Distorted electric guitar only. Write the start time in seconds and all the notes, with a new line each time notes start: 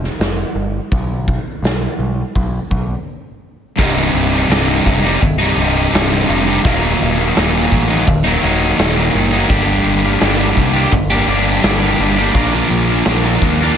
3.76 C2 G2 C3 G3 D#4
3.94 C3 G3 D#4
4.47 C2 G2 C3 G3 D#4
4.67 C3 G3 D#4
5.03 C3 G3 D#4
5.21 muted distorted electric guitar stroke
5.38 C3 G3 D#4
5.57 G2 C3 G3 D#4
5.91 C2 G2 C3 G3 D#4
6.10 C3 G3 D#4
6.26 G2 C3 G3 D#4
6.46 C3 G3 D#4
6.63 D#2 A#2 D#3 F#3 A#3 D#4
6.81 D#3 F#3 A#3 D#4
7.35 D#2 A#2 D#3 F#3 A#3 D#4
7.53 D#3 F#3 A#3 D#4
7.89 D#3 F#3 A#3 D#4
8.07 muted distorted electric guitar stroke
8.24 D#3 F#3 A#3 D#4
8.41 D#3 F#3 A#3 D#4
8.76 D#2 A#2 D#3 F#3 A#3 D#4
8.94 D#3 F#3 A#3 D#4
9.13 D#3 F#3 A#3 D#4
9.30 D#3 F#3 A#3 D#4
9.47 G2 D3 G3 A#3 D4 G4
9.65 G3 A#3 D4 G4
10.19 G2 D3 G3 A#3 D4 G4
10.37 G3 A#3 D4 G4
10.73 G3 A#3 D4 G4
10.92 muted distorted electric guitar stroke
11.10 G3 A#3 D4 G4
11.27 G3 A#3 D4 G4
11.61 G2 D3 G3 A#3 D4 G4
11.79 G3 A#3 D4 G4
11.98 G3 A#3 D4 G4
12.16 G3 A#3 D4 G4
12.33 A#2 F3 A#3 D4 F4 A#4
12.52 A#3 D4 F4 A#4
13.06 A#2 F3 A#3 D4 F4 A#4
13.25 A#3 D4 F4 A#4
13.60 A#3 D4 F4 A#4